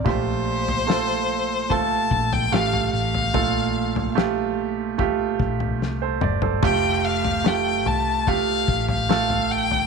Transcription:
<<
  \new Staff \with { instrumentName = "Violin" } { \time 4/4 \key f \mixolydian \tempo 4 = 73 c''2 a''8. g''16 f''8 f''8~ | f''4 r2. | g''8 f''8 g''8 a''8 f''8. f''8. g''8 | }
  \new Staff \with { instrumentName = "Grand piano" } { \time 4/4 \key f \mixolydian << { bes,4. r2 r8 | bes,4. r4. r16 <a' c''>16 d''16 <a' c''>16~ | <a' c''>16 r2. r8. | } \\ { <a f' g'>4 <a f' a'>4 <a f' a'>4 <a f' g'>4 | <a f' a'>4 <a f' g'>4 <a f' g'>4 r4 | <a f' g'>4 <a f' g'>4 <a f' g'>4 <a f' a'>4 | } >> }
  \new Staff \with { instrumentName = "Fretless electric bass" } { \clef bass \time 4/4 \key f \mixolydian bes,,2~ bes,,8 bes,,8 a,,8 a,,8 | bes,,2~ bes,,8 bes,,8 c,8 g,,8 | f,,4. c,4 a,,4. | }
  \new DrumStaff \with { instrumentName = "Drums" } \drummode { \time 4/4 <bd tomfh>8. tomfh16 sn4 <bd tomfh>8 bd16 tomfh16 sn16 tomfh8 tomfh16 | <bd tomfh>8. tomfh16 sn4 <bd tomfh>8 bd16 tomfh16 sn8 toml16 tomfh16 | <cymc bd tomfh>8. tomfh16 sn8 tomfh8 <bd tomfh>8 bd16 tomfh16 sn16 tomfh8 tomfh16 | }
>>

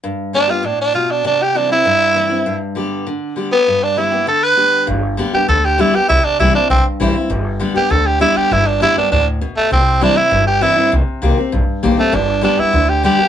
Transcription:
<<
  \new Staff \with { instrumentName = "Tenor saxophone" } { \time 4/4 \key g \major \tempo 4 = 198 r4 d'8 f'8 d'8 d'8 f'8 d'8 | d'8 g'8 d'8 e'2~ e'8~ | e'8 r2. b8~ | b8 d'8 e'4 a'8 b'4. |
r4. g'8 a'8 g'8 e'8 g'8 | e'8 d'8 e'8 d'8 c'8 r4. | r4. g'8 a'8 g'8 e'8 g'8 | e'8 d'8 e'8 d'8 d'8 r4 a8 |
c'4 d'8 e'4 g'8 e'4 | r2. r8 a8 | d'4 d'8 e'4 g'8 g'4 | }
  \new Staff \with { instrumentName = "Steel-string acoustic guitar" } { \time 4/4 \key g \major << { r4 <d g b g'>8 <b g'>8 r2 | r4 <e g c' e'>8 <c' e'>8 r4 <e g c' e'>8 <c' e'>8 | r4 <d g b g'>4 r4 <d g b g'>8 <b g'>8 | r4 <d g b g'>8 <b g'>8 r4 <d g b g'>4 |
r4 <d g b g'>8 <b g'>8 r4 <d g b g'>8 <b g'>8 | r4 <e g c' e'>8 <c' e'>8 r4 <e g c' e'>8 <c' e'>8 | r4 <d g b g'>8 <b g'>8 r4 <d g b g'>4 | r4 <d g b g'>8 <b g'>8 r2 |
r4 <e g c' e'>8 <c' e'>8 r4 <e g c' e'>8 <c' e'>8 | r4 <ees bes c' g'>8 <c' g'>8 r4 <ees bes c' g'>8 <c' g'>8 | r4 <d g b g'>8 <b g'>8 r4 <d g b g'>8 <b g'>8 | } \\ { g,2 a,4 b,4 | c2 g,2 | g,2 d2 | g,2 d2 |
g,2 d2 | c2 g,2 | g,2 d2 | g,2 a,4 b,4 |
c2 g,2 | c2 g,2 | g,2 d2 | } >> }
  \new Staff \with { instrumentName = "Upright bass" } { \clef bass \time 4/4 \key g \major r1 | r1 | r1 | r1 |
g,,4. r8 d,4. r8 | c,8 r8 c,8 r8 b,,8 r8 a,,8 r8 | g,,4. r8 d,4. r8 | g,,4. r8 d,4. r8 |
c,4. r8 g,,4. r8 | c,8 r8 c,8 r8 bes,,8 r8 a,,8 r8 | g,,4. r8 d,4. r8 | }
>>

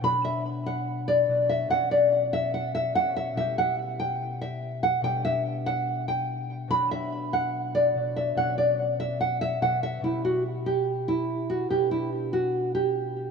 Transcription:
<<
  \new Staff \with { instrumentName = "Nylon-string guitar" } { \time 4/4 \key b \minor \tempo 4 = 144 b''8 e''8 r8 fis''4 d''4 e''8 | fis''8 d''8 r8 e''8 fis''8 e''8 fis''8 e''8 | e''8 fis''8 r8 g''4 e''4 fis''8 | g''8 e''8 r8 fis''4 g''4. |
b''8 e''8 r8 fis''4 d''4 e''8 | fis''8 d''8 r8 e''8 fis''8 e''8 fis''8 e''8 | e'8 fis'8 r8 g'4 e'4 fis'8 | g'8 e'8 r8 fis'4 g'4. | }
  \new Staff \with { instrumentName = "Harp" } { \time 4/4 \key b \minor <b, fis d' fis'>2. <b, fis d' fis'>4 | <b, fis cis' fis'>2. <b, fis cis' fis'>4 | <b, g e' g'>1 | <b, g d' g'>1 |
<b, fis d' fis'>2. <b, fis d' fis'>4 | <b, fis cis' fis'>2. <b, fis cis' fis'>4 | <b, g e' g'>1 | <b, g d' b'>1 | }
>>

